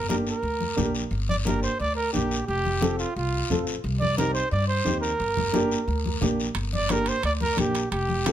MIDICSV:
0, 0, Header, 1, 5, 480
1, 0, Start_track
1, 0, Key_signature, -2, "minor"
1, 0, Tempo, 339751
1, 1582, Time_signature, 4, 2, 24, 8
1, 11756, End_track
2, 0, Start_track
2, 0, Title_t, "Trumpet"
2, 0, Program_c, 0, 56
2, 132, Note_on_c, 0, 70, 82
2, 242, Note_off_c, 0, 70, 0
2, 405, Note_on_c, 0, 70, 79
2, 1298, Note_off_c, 0, 70, 0
2, 1825, Note_on_c, 0, 74, 91
2, 1932, Note_off_c, 0, 74, 0
2, 2061, Note_on_c, 0, 70, 85
2, 2285, Note_off_c, 0, 70, 0
2, 2296, Note_on_c, 0, 72, 89
2, 2522, Note_off_c, 0, 72, 0
2, 2546, Note_on_c, 0, 74, 97
2, 2758, Note_off_c, 0, 74, 0
2, 2766, Note_on_c, 0, 70, 95
2, 2997, Note_off_c, 0, 70, 0
2, 3012, Note_on_c, 0, 67, 71
2, 3464, Note_off_c, 0, 67, 0
2, 3480, Note_on_c, 0, 67, 91
2, 4161, Note_off_c, 0, 67, 0
2, 4225, Note_on_c, 0, 65, 77
2, 4448, Note_off_c, 0, 65, 0
2, 4465, Note_on_c, 0, 65, 81
2, 5134, Note_off_c, 0, 65, 0
2, 5647, Note_on_c, 0, 74, 101
2, 5878, Note_off_c, 0, 74, 0
2, 5907, Note_on_c, 0, 70, 95
2, 6124, Note_off_c, 0, 70, 0
2, 6132, Note_on_c, 0, 72, 97
2, 6361, Note_off_c, 0, 72, 0
2, 6383, Note_on_c, 0, 74, 93
2, 6607, Note_off_c, 0, 74, 0
2, 6615, Note_on_c, 0, 72, 93
2, 7065, Note_off_c, 0, 72, 0
2, 7077, Note_on_c, 0, 70, 91
2, 8713, Note_off_c, 0, 70, 0
2, 9527, Note_on_c, 0, 74, 96
2, 9769, Note_on_c, 0, 70, 91
2, 9790, Note_off_c, 0, 74, 0
2, 10010, Note_on_c, 0, 72, 94
2, 10031, Note_off_c, 0, 70, 0
2, 10236, Note_off_c, 0, 72, 0
2, 10248, Note_on_c, 0, 74, 91
2, 10350, Note_off_c, 0, 74, 0
2, 10474, Note_on_c, 0, 70, 95
2, 10691, Note_off_c, 0, 70, 0
2, 10729, Note_on_c, 0, 67, 81
2, 11163, Note_off_c, 0, 67, 0
2, 11184, Note_on_c, 0, 67, 93
2, 11756, Note_off_c, 0, 67, 0
2, 11756, End_track
3, 0, Start_track
3, 0, Title_t, "Upright piano"
3, 0, Program_c, 1, 0
3, 124, Note_on_c, 1, 58, 75
3, 130, Note_on_c, 1, 62, 69
3, 130, Note_on_c, 1, 67, 84
3, 469, Note_off_c, 1, 58, 0
3, 471, Note_off_c, 1, 62, 0
3, 471, Note_off_c, 1, 67, 0
3, 1080, Note_on_c, 1, 58, 82
3, 1083, Note_on_c, 1, 62, 77
3, 1089, Note_on_c, 1, 67, 88
3, 1427, Note_off_c, 1, 58, 0
3, 1428, Note_off_c, 1, 62, 0
3, 1432, Note_off_c, 1, 67, 0
3, 2049, Note_on_c, 1, 58, 69
3, 2060, Note_on_c, 1, 62, 71
3, 2061, Note_on_c, 1, 67, 82
3, 2392, Note_off_c, 1, 58, 0
3, 2398, Note_off_c, 1, 62, 0
3, 2398, Note_off_c, 1, 67, 0
3, 3009, Note_on_c, 1, 58, 70
3, 3014, Note_on_c, 1, 62, 62
3, 3031, Note_on_c, 1, 67, 79
3, 3352, Note_off_c, 1, 58, 0
3, 3355, Note_off_c, 1, 62, 0
3, 3363, Note_off_c, 1, 67, 0
3, 3973, Note_on_c, 1, 65, 64
3, 3975, Note_on_c, 1, 60, 76
3, 3980, Note_on_c, 1, 69, 88
3, 4315, Note_off_c, 1, 60, 0
3, 4315, Note_off_c, 1, 65, 0
3, 4318, Note_off_c, 1, 69, 0
3, 4948, Note_on_c, 1, 60, 69
3, 4949, Note_on_c, 1, 65, 70
3, 4956, Note_on_c, 1, 69, 84
3, 5282, Note_off_c, 1, 60, 0
3, 5282, Note_off_c, 1, 65, 0
3, 5286, Note_off_c, 1, 69, 0
3, 5904, Note_on_c, 1, 60, 79
3, 5906, Note_on_c, 1, 63, 69
3, 5915, Note_on_c, 1, 67, 85
3, 6240, Note_off_c, 1, 60, 0
3, 6241, Note_off_c, 1, 63, 0
3, 6245, Note_off_c, 1, 67, 0
3, 6847, Note_on_c, 1, 60, 71
3, 6848, Note_on_c, 1, 63, 58
3, 6858, Note_on_c, 1, 67, 80
3, 7191, Note_off_c, 1, 60, 0
3, 7192, Note_off_c, 1, 63, 0
3, 7197, Note_off_c, 1, 67, 0
3, 7811, Note_on_c, 1, 58, 88
3, 7821, Note_on_c, 1, 62, 85
3, 7831, Note_on_c, 1, 67, 96
3, 8153, Note_off_c, 1, 58, 0
3, 8158, Note_off_c, 1, 62, 0
3, 8163, Note_off_c, 1, 67, 0
3, 8775, Note_on_c, 1, 58, 80
3, 8781, Note_on_c, 1, 62, 72
3, 8787, Note_on_c, 1, 67, 89
3, 9115, Note_off_c, 1, 58, 0
3, 9118, Note_off_c, 1, 62, 0
3, 9120, Note_off_c, 1, 67, 0
3, 9744, Note_on_c, 1, 62, 71
3, 9750, Note_on_c, 1, 58, 76
3, 9753, Note_on_c, 1, 67, 81
3, 10079, Note_off_c, 1, 62, 0
3, 10082, Note_off_c, 1, 58, 0
3, 10084, Note_off_c, 1, 67, 0
3, 10689, Note_on_c, 1, 58, 69
3, 10698, Note_on_c, 1, 62, 58
3, 10702, Note_on_c, 1, 67, 77
3, 11031, Note_off_c, 1, 58, 0
3, 11036, Note_off_c, 1, 62, 0
3, 11037, Note_off_c, 1, 67, 0
3, 11669, Note_on_c, 1, 65, 69
3, 11671, Note_on_c, 1, 60, 76
3, 11681, Note_on_c, 1, 69, 83
3, 11756, Note_off_c, 1, 60, 0
3, 11756, Note_off_c, 1, 65, 0
3, 11756, Note_off_c, 1, 69, 0
3, 11756, End_track
4, 0, Start_track
4, 0, Title_t, "Upright bass"
4, 0, Program_c, 2, 32
4, 0, Note_on_c, 2, 31, 94
4, 431, Note_off_c, 2, 31, 0
4, 601, Note_on_c, 2, 38, 89
4, 993, Note_off_c, 2, 38, 0
4, 1091, Note_on_c, 2, 34, 85
4, 1479, Note_off_c, 2, 34, 0
4, 1568, Note_on_c, 2, 31, 98
4, 2342, Note_off_c, 2, 31, 0
4, 2545, Note_on_c, 2, 38, 98
4, 2928, Note_off_c, 2, 38, 0
4, 3029, Note_on_c, 2, 34, 84
4, 3411, Note_off_c, 2, 34, 0
4, 3508, Note_on_c, 2, 29, 94
4, 4274, Note_off_c, 2, 29, 0
4, 4470, Note_on_c, 2, 36, 95
4, 4851, Note_off_c, 2, 36, 0
4, 4943, Note_on_c, 2, 33, 79
4, 5327, Note_off_c, 2, 33, 0
4, 5426, Note_on_c, 2, 36, 100
4, 6193, Note_off_c, 2, 36, 0
4, 6387, Note_on_c, 2, 43, 98
4, 6770, Note_off_c, 2, 43, 0
4, 6865, Note_on_c, 2, 39, 83
4, 7248, Note_off_c, 2, 39, 0
4, 7345, Note_on_c, 2, 31, 94
4, 8112, Note_off_c, 2, 31, 0
4, 8300, Note_on_c, 2, 38, 96
4, 8685, Note_off_c, 2, 38, 0
4, 8779, Note_on_c, 2, 34, 79
4, 9164, Note_off_c, 2, 34, 0
4, 9255, Note_on_c, 2, 31, 90
4, 10025, Note_off_c, 2, 31, 0
4, 10218, Note_on_c, 2, 38, 102
4, 10603, Note_off_c, 2, 38, 0
4, 10710, Note_on_c, 2, 34, 87
4, 11090, Note_off_c, 2, 34, 0
4, 11184, Note_on_c, 2, 29, 96
4, 11756, Note_off_c, 2, 29, 0
4, 11756, End_track
5, 0, Start_track
5, 0, Title_t, "Drums"
5, 131, Note_on_c, 9, 73, 69
5, 141, Note_on_c, 9, 63, 93
5, 272, Note_off_c, 9, 73, 0
5, 282, Note_off_c, 9, 63, 0
5, 374, Note_on_c, 9, 73, 61
5, 516, Note_off_c, 9, 73, 0
5, 615, Note_on_c, 9, 74, 63
5, 624, Note_on_c, 9, 63, 28
5, 756, Note_off_c, 9, 74, 0
5, 765, Note_off_c, 9, 63, 0
5, 855, Note_on_c, 9, 63, 65
5, 997, Note_off_c, 9, 63, 0
5, 1097, Note_on_c, 9, 73, 70
5, 1106, Note_on_c, 9, 63, 74
5, 1106, Note_on_c, 9, 64, 76
5, 1238, Note_off_c, 9, 73, 0
5, 1247, Note_off_c, 9, 63, 0
5, 1247, Note_off_c, 9, 64, 0
5, 1336, Note_on_c, 9, 73, 74
5, 1478, Note_off_c, 9, 73, 0
5, 1566, Note_on_c, 9, 74, 61
5, 1585, Note_on_c, 9, 63, 36
5, 1707, Note_off_c, 9, 74, 0
5, 1727, Note_off_c, 9, 63, 0
5, 1824, Note_on_c, 9, 63, 62
5, 1965, Note_off_c, 9, 63, 0
5, 2052, Note_on_c, 9, 73, 64
5, 2072, Note_on_c, 9, 63, 90
5, 2194, Note_off_c, 9, 73, 0
5, 2214, Note_off_c, 9, 63, 0
5, 2302, Note_on_c, 9, 73, 56
5, 2443, Note_off_c, 9, 73, 0
5, 2537, Note_on_c, 9, 74, 64
5, 2555, Note_on_c, 9, 63, 31
5, 2678, Note_off_c, 9, 74, 0
5, 2697, Note_off_c, 9, 63, 0
5, 3020, Note_on_c, 9, 73, 70
5, 3046, Note_on_c, 9, 63, 79
5, 3161, Note_off_c, 9, 73, 0
5, 3187, Note_off_c, 9, 63, 0
5, 3267, Note_on_c, 9, 73, 69
5, 3409, Note_off_c, 9, 73, 0
5, 3511, Note_on_c, 9, 74, 62
5, 3522, Note_on_c, 9, 63, 36
5, 3652, Note_off_c, 9, 74, 0
5, 3664, Note_off_c, 9, 63, 0
5, 3751, Note_on_c, 9, 63, 64
5, 3892, Note_off_c, 9, 63, 0
5, 3989, Note_on_c, 9, 63, 96
5, 3989, Note_on_c, 9, 73, 65
5, 4130, Note_off_c, 9, 63, 0
5, 4130, Note_off_c, 9, 73, 0
5, 4224, Note_on_c, 9, 73, 59
5, 4365, Note_off_c, 9, 73, 0
5, 4473, Note_on_c, 9, 74, 67
5, 4491, Note_on_c, 9, 63, 31
5, 4614, Note_off_c, 9, 74, 0
5, 4632, Note_off_c, 9, 63, 0
5, 4948, Note_on_c, 9, 73, 69
5, 4963, Note_on_c, 9, 63, 77
5, 4963, Note_on_c, 9, 64, 73
5, 5089, Note_off_c, 9, 73, 0
5, 5105, Note_off_c, 9, 63, 0
5, 5105, Note_off_c, 9, 64, 0
5, 5185, Note_on_c, 9, 73, 71
5, 5326, Note_off_c, 9, 73, 0
5, 5423, Note_on_c, 9, 74, 66
5, 5440, Note_on_c, 9, 63, 33
5, 5564, Note_off_c, 9, 74, 0
5, 5581, Note_off_c, 9, 63, 0
5, 5672, Note_on_c, 9, 63, 67
5, 5813, Note_off_c, 9, 63, 0
5, 5906, Note_on_c, 9, 73, 72
5, 5910, Note_on_c, 9, 63, 94
5, 6047, Note_off_c, 9, 73, 0
5, 6051, Note_off_c, 9, 63, 0
5, 6142, Note_on_c, 9, 73, 67
5, 6283, Note_off_c, 9, 73, 0
5, 6378, Note_on_c, 9, 74, 70
5, 6398, Note_on_c, 9, 63, 30
5, 6519, Note_off_c, 9, 74, 0
5, 6540, Note_off_c, 9, 63, 0
5, 6863, Note_on_c, 9, 73, 67
5, 6871, Note_on_c, 9, 63, 73
5, 7004, Note_off_c, 9, 73, 0
5, 7012, Note_off_c, 9, 63, 0
5, 7107, Note_on_c, 9, 73, 64
5, 7249, Note_off_c, 9, 73, 0
5, 7344, Note_on_c, 9, 74, 71
5, 7359, Note_on_c, 9, 63, 33
5, 7485, Note_off_c, 9, 74, 0
5, 7500, Note_off_c, 9, 63, 0
5, 7589, Note_on_c, 9, 63, 65
5, 7589, Note_on_c, 9, 64, 67
5, 7730, Note_off_c, 9, 63, 0
5, 7730, Note_off_c, 9, 64, 0
5, 7822, Note_on_c, 9, 63, 94
5, 7823, Note_on_c, 9, 73, 61
5, 7963, Note_off_c, 9, 63, 0
5, 7965, Note_off_c, 9, 73, 0
5, 8073, Note_on_c, 9, 73, 62
5, 8214, Note_off_c, 9, 73, 0
5, 8305, Note_on_c, 9, 63, 30
5, 8316, Note_on_c, 9, 74, 59
5, 8446, Note_off_c, 9, 63, 0
5, 8457, Note_off_c, 9, 74, 0
5, 8552, Note_on_c, 9, 63, 64
5, 8693, Note_off_c, 9, 63, 0
5, 8788, Note_on_c, 9, 63, 76
5, 8788, Note_on_c, 9, 64, 76
5, 8796, Note_on_c, 9, 73, 69
5, 8929, Note_off_c, 9, 63, 0
5, 8929, Note_off_c, 9, 64, 0
5, 8937, Note_off_c, 9, 73, 0
5, 9037, Note_on_c, 9, 73, 69
5, 9179, Note_off_c, 9, 73, 0
5, 9250, Note_on_c, 9, 65, 71
5, 9274, Note_on_c, 9, 63, 34
5, 9278, Note_on_c, 9, 74, 71
5, 9392, Note_off_c, 9, 65, 0
5, 9415, Note_off_c, 9, 63, 0
5, 9419, Note_off_c, 9, 74, 0
5, 9512, Note_on_c, 9, 63, 65
5, 9653, Note_off_c, 9, 63, 0
5, 9736, Note_on_c, 9, 65, 68
5, 9749, Note_on_c, 9, 63, 88
5, 9750, Note_on_c, 9, 73, 66
5, 9877, Note_off_c, 9, 65, 0
5, 9890, Note_off_c, 9, 63, 0
5, 9891, Note_off_c, 9, 73, 0
5, 9973, Note_on_c, 9, 65, 59
5, 9993, Note_on_c, 9, 73, 64
5, 10114, Note_off_c, 9, 65, 0
5, 10134, Note_off_c, 9, 73, 0
5, 10219, Note_on_c, 9, 65, 64
5, 10226, Note_on_c, 9, 63, 30
5, 10235, Note_on_c, 9, 74, 66
5, 10360, Note_off_c, 9, 65, 0
5, 10367, Note_off_c, 9, 63, 0
5, 10377, Note_off_c, 9, 74, 0
5, 10466, Note_on_c, 9, 63, 67
5, 10607, Note_off_c, 9, 63, 0
5, 10699, Note_on_c, 9, 63, 74
5, 10699, Note_on_c, 9, 73, 71
5, 10708, Note_on_c, 9, 65, 64
5, 10841, Note_off_c, 9, 63, 0
5, 10841, Note_off_c, 9, 73, 0
5, 10849, Note_off_c, 9, 65, 0
5, 10944, Note_on_c, 9, 73, 64
5, 10950, Note_on_c, 9, 65, 65
5, 11085, Note_off_c, 9, 73, 0
5, 11092, Note_off_c, 9, 65, 0
5, 11185, Note_on_c, 9, 63, 33
5, 11189, Note_on_c, 9, 74, 62
5, 11190, Note_on_c, 9, 65, 60
5, 11326, Note_off_c, 9, 63, 0
5, 11330, Note_off_c, 9, 74, 0
5, 11331, Note_off_c, 9, 65, 0
5, 11430, Note_on_c, 9, 63, 64
5, 11572, Note_off_c, 9, 63, 0
5, 11671, Note_on_c, 9, 65, 68
5, 11671, Note_on_c, 9, 73, 71
5, 11675, Note_on_c, 9, 63, 89
5, 11756, Note_off_c, 9, 63, 0
5, 11756, Note_off_c, 9, 65, 0
5, 11756, Note_off_c, 9, 73, 0
5, 11756, End_track
0, 0, End_of_file